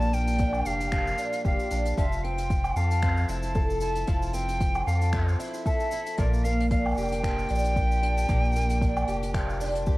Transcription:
Already playing: sub bass A#1, twelve-string acoustic guitar A#2 F3 A#3 D4 G4, flute A5
0.02 cabasa
0.13 twelve-string acoustic guitar A#3, flute G5, closed hi-hat, cabasa
0.20 closed hi-hat
0.27 closed hi-hat, cabasa
0.33 closed hi-hat
0.38 twelve-string acoustic guitar D4, kick, closed hi-hat, cabasa
0.53 cabasa, low woodblock
0.65 sub bass F1, twelve-string acoustic guitar G4, flute F5, closed hi-hat, cabasa
0.80 closed hi-hat, cabasa
0.91 twelve-string acoustic guitar F3, finger snap, kick, closed hi-hat, cabasa
1.07 cabasa
1.18 twelve-string acoustic guitar D4, closed hi-hat, cabasa
1.33 closed hi-hat, cabasa
1.45 sub bass F1, twelve-string acoustic guitar G4, flute F5, kick, cabasa
1.59 cabasa
1.70 sub bass A#1, twelve-string acoustic guitar D4, closed hi-hat, cabasa
1.85 closed hi-hat, cabasa
1.97 sub bass F1, twelve-string acoustic guitar F3, flute E5, kick, closed hi-hat, cabasa
2.13 cabasa
2.23 twelve-string acoustic guitar C4, flute G5, closed hi-hat
2.38 closed hi-hat, cabasa
2.50 kick, closed hi-hat, cabasa
2.64 cabasa, low woodblock
2.76 sub bass F2, twelve-string acoustic guitar A4, flute F5, cabasa
2.91 closed hi-hat, cabasa
3.02 twelve-string acoustic guitar C4, finger snap, kick, closed hi-hat, cabasa
3.17 cabasa
3.29 sub bass F1, twelve-string acoustic guitar E4, flute A5, closed hi-hat, cabasa
3.43 closed hi-hat, cabasa
3.55 twelve-string acoustic guitar A4, kick, cabasa
3.70 cabasa
3.81 twelve-string acoustic guitar E4, flute A5, closed hi-hat, cabasa
3.95 closed hi-hat, cabasa
4.07 sub bass F1, twelve-string acoustic guitar F3, kick, closed hi-hat, cabasa
4.22 cabasa
4.27 flute A5
4.33 twelve-string acoustic guitar C4, flute G5, closed hi-hat, cabasa
4.49 closed hi-hat, cabasa
4.60 kick, closed hi-hat, cabasa
4.75 cabasa, low woodblock
4.86 sub bass F2, twelve-string acoustic guitar A4, flute F5, cabasa
5.01 closed hi-hat, cabasa
5.13 twelve-string acoustic guitar C4, finger snap, kick, closed hi-hat, cabasa
5.28 cabasa
5.39 twelve-string acoustic guitar E4, closed hi-hat, cabasa
5.43 closed hi-hat
5.47 closed hi-hat
5.50 closed hi-hat, cabasa
5.54 closed hi-hat
5.57 closed hi-hat
5.65 twelve-string acoustic guitar A4, flute E5, kick, cabasa
5.80 cabasa
5.91 twelve-string acoustic guitar E4, closed hi-hat, cabasa
6.06 closed hi-hat, cabasa
6.17 sub bass A#1, twelve-string acoustic guitar A#2, flute D5, kick, closed hi-hat, cabasa
6.33 cabasa
6.44 twelve-string acoustic guitar A#3, flute F5, closed hi-hat, cabasa
6.60 closed hi-hat
6.70 twelve-string acoustic guitar D4, flute F5, kick, closed hi-hat, cabasa
6.86 cabasa, low woodblock
6.88 cabasa
6.91 cabasa
6.94 flute G5, cabasa
6.97 sub bass F1, twelve-string acoustic guitar G4, cabasa
7.00 cabasa
7.04 cabasa
7.08 cabasa
7.12 closed hi-hat, cabasa
7.24 twelve-string acoustic guitar F3, finger snap, kick, closed hi-hat, cabasa
7.39 cabasa
7.49 sub bass A#1, twelve-string acoustic guitar D4, closed hi-hat, cabasa
7.55 cabasa
7.59 cabasa
7.64 closed hi-hat, cabasa
7.76 twelve-string acoustic guitar G4, kick, cabasa
7.92 cabasa
8.02 twelve-string acoustic guitar D4, closed hi-hat
8.17 closed hi-hat, cabasa
8.29 sub bass A#1, twelve-string acoustic guitar A#2, kick, closed hi-hat, cabasa
8.45 cabasa
8.52 twelve-string acoustic guitar A#3, cabasa
8.56 closed hi-hat, cabasa
8.61 cabasa
8.70 closed hi-hat, cabasa
8.81 twelve-string acoustic guitar D4, kick, closed hi-hat, cabasa
8.97 cabasa, low woodblock
9.07 sub bass F1, twelve-string acoustic guitar G4, closed hi-hat, cabasa
9.23 closed hi-hat, cabasa
9.34 twelve-string acoustic guitar F3, finger snap, kick, closed hi-hat, cabasa
9.50 cabasa
9.60 twelve-string acoustic guitar D4, closed hi-hat, cabasa
9.63 closed hi-hat
9.66 closed hi-hat
9.69 closed hi-hat
9.72 closed hi-hat
9.75 closed hi-hat, cabasa
9.86 sub bass D2, twelve-string acoustic guitar G4, kick, cabasa

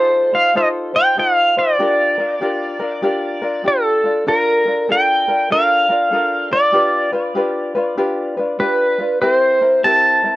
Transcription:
Already playing: ukulele D#4 F4 A4 C5, pedal steel guitar C5
0.33 ukulele D#4 F4 C5, pedal steel guitar F5
0.55 ukulele D#4 F4 A4 C5, pedal steel guitar D#5
0.94 ukulele D#4 F4 C5, pedal steel guitar G5
1.17 ukulele D#4 F4 A4 C5, pedal steel guitar F5
1.57 ukulele D#4 F4 C5, pedal steel guitar D5
1.79 ukulele D4 F4 G4 A#4
2.18 ukulele D4 F4 A#4
2.41 ukulele D4 F4 G4 A#4
2.80 ukulele D4 F4 A#4
3.02 ukulele D4 F4 G4 A#4
3.42 ukulele D4 F4 A#4
3.64 ukulele D4 F4 G4, pedal steel guitar A4
4.04 ukulele D4 F4
4.27 ukulele D4 F4 A#4, pedal steel guitar A#4
4.66 ukulele D4 F4 A#4
4.89 ukulele D4 F4 A4 A#4, pedal steel guitar G5
5.28 ukulele D4 F4 A#4
5.50 ukulele D4 F4 A4 A#4, pedal steel guitar F5
5.89 ukulele D4 F4 A#4
6.11 ukulele D4 F4 A4 A#4
6.51 ukulele D4 F4 A#4, pedal steel guitar D5
6.73 ukulele D4 F4 G4 B4
7.12 ukulele D4 F4 B4
7.35 ukulele D4 F4 G4 B4
7.75 ukulele D4 F4 B4
7.97 ukulele D4 F4 G4 B4
8.37 ukulele D4 F4 B4
8.59 ukulele D4 F4 G4 B4, pedal steel guitar B4
8.98 ukulele D4 F4 B4
9.22 ukulele C4 E4 G4 A#4, pedal steel guitar B4
9.33 pedal steel guitar C5
9.62 ukulele C4 E4 A#4
9.84 ukulele C4 E4 G4 A#4, pedal steel guitar A5
10.23 ukulele C4 E4 A#4

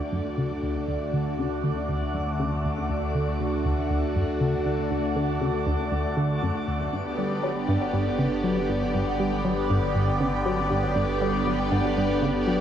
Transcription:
Already playing: analog synth bass D2, analog synth pad D3 A3 F#4 D5
0.12 synth arpeggio sound F#2
0.38 synth arpeggio sound C#3
0.63 synth arpeggio sound D2
0.88 synth arpeggio sound D2
1.13 synth arpeggio sound D3
1.38 synth arpeggio sound C#3
1.64 synth arpeggio sound D2
1.89 synth arpeggio sound D2
2.14 synth arpeggio sound F#2
2.39 synth arpeggio sound C#3
2.64 synth arpeggio sound D2
2.90 synth arpeggio sound D2
3.15 synth arpeggio sound D3
3.40 synth arpeggio sound C#3
3.65 synth arpeggio sound D2
3.90 synth arpeggio sound D2
4.16 synth arpeggio sound F#2
4.41 synth arpeggio sound C#3
4.66 synth arpeggio sound D2
4.91 synth arpeggio sound D2
5.16 synth arpeggio sound D3
5.42 synth arpeggio sound C#3
5.67 synth arpeggio sound D2
5.92 synth arpeggio sound D2
6.17 synth arpeggio sound D3
6.43 synth arpeggio sound F#2
6.68 synth arpeggio sound D2
6.93 analog synth bass G1, synth arpeggio sound G2, analog synth pad D3 B3 G4 D5
7.18 synth arpeggio sound G3
7.43 synth arpeggio sound F#3
7.68 synth arpeggio sound G2
7.93 synth arpeggio sound G2
8.19 synth arpeggio sound C#3
8.44 synth arpeggio sound F#3
8.69 synth arpeggio sound G2
8.94 synth arpeggio sound G2
9.20 synth arpeggio sound G3
9.45 synth arpeggio sound F#3
9.70 synth arpeggio sound G2
9.95 synth arpeggio sound G2
10.21 synth arpeggio sound C#3
10.46 synth arpeggio sound F#3
10.71 synth arpeggio sound G2
10.96 synth arpeggio sound G2
11.21 synth arpeggio sound G3
11.47 synth arpeggio sound F#3
11.72 synth arpeggio sound G2
11.97 synth arpeggio sound G2
12.22 synth arpeggio sound C#3
12.47 synth arpeggio sound F#3

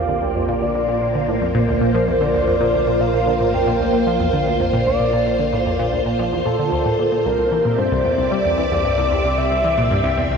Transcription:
Already playing: synth drone A#1, string machine A#3 C4 F4 G4 C5 D5 G5, analog synth lead F5
0.09 synth arpeggio sound D3
0.22 synth arpeggio sound D2
0.35 synth arpeggio sound F2
0.49 synth arpeggio sound A#2
0.62 synth arpeggio sound D2, analog synth lead D5
0.75 synth arpeggio sound A#2
0.88 synth arpeggio sound A#2
1.02 synth arpeggio sound A#2
1.15 synth arpeggio sound D3
1.28 synth arpeggio sound A2
1.42 synth arpeggio sound F2
1.55 synth arpeggio sound A#2
1.68 synth arpeggio sound D2
1.81 synth arpeggio sound A#2
1.95 synth arpeggio sound F3
2.08 synth arpeggio sound E2
2.21 synth arpeggio sound D3, analog synth lead D5
2.34 synth arpeggio sound D2
2.48 synth arpeggio sound F2
2.61 synth arpeggio sound A#2
2.74 synth arpeggio sound D2
2.87 synth arpeggio sound A#2
3.01 synth arpeggio sound A#2, analog synth lead F5
3.14 synth arpeggio sound A#2
3.27 synth arpeggio sound D3
3.40 synth arpeggio sound A2
3.54 synth arpeggio sound F2, analog synth lead G5
3.67 synth arpeggio sound A#2
3.80 synth arpeggio sound D2
3.93 synth arpeggio sound A#2
4.07 synth arpeggio sound F3, analog synth lead F5
4.20 synth arpeggio sound E2
4.33 synth arpeggio sound D3
4.47 synth arpeggio sound D2
4.60 synth arpeggio sound F2
4.73 synth arpeggio sound A#2
4.86 synth arpeggio sound D2, analog synth lead D5
5.00 synth arpeggio sound A#2
5.13 synth arpeggio sound A#2
5.26 synth arpeggio sound A#2
5.39 synth arpeggio sound D3
5.53 synth arpeggio sound A2
5.66 synth arpeggio sound F2
5.79 synth arpeggio sound A#2
5.93 synth arpeggio sound D2
6.06 synth arpeggio sound A#2
6.19 synth arpeggio sound F3
6.32 synth arpeggio sound E2
6.46 synth arpeggio sound A#2, analog synth lead A4
6.59 synth arpeggio sound D3
6.72 synth arpeggio sound D2
6.86 synth arpeggio sound A2
6.99 synth arpeggio sound A#2
7.12 synth arpeggio sound A#2
7.25 synth drone C2, synth arpeggio sound C2, string machine C4, analog synth lead A#4
7.39 synth arpeggio sound C2
7.49 synth arpeggio sound E3, string machine G4
7.58 string machine D5
7.64 synth arpeggio sound A#2, string machine E5
7.79 synth arpeggio sound G2, analog synth lead C5
7.92 synth arpeggio sound C2
8.05 synth arpeggio sound E2
8.18 synth arpeggio sound C2
8.32 synth arpeggio sound G3, analog synth lead D5
8.45 synth arpeggio sound E2
8.58 synth arpeggio sound E3
8.71 synth arpeggio sound E2
8.85 synth arpeggio sound G2
8.98 synth arpeggio sound C2
9.11 synth arpeggio sound E2
9.24 synth arpeggio sound C2
9.38 synth arpeggio sound C2, analog synth lead E5
9.51 synth arpeggio sound C2
9.64 synth arpeggio sound E3
9.77 synth arpeggio sound A#2
9.91 synth arpeggio sound G2
10.04 synth arpeggio sound C2
10.17 synth arpeggio sound E2
10.31 synth arpeggio sound C2

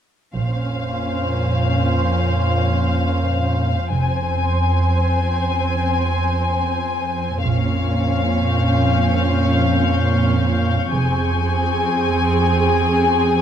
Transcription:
0.35 double bass section A#1, synth drone F2, cello section A#2, viola section C#4 C5, violin section F5
3.90 double bass section F1, cello section F2, synth drone F2, viola section C4 C5, violin section G#5
7.42 double bass section A#1, synth drone F2, cello section A#2, viola section C4 C#4, violin section F5 C#6
8.28 violin section G6
10.92 double bass section F1, synth drone F2, cello section F2, viola section C4 G#4, violin section G#5

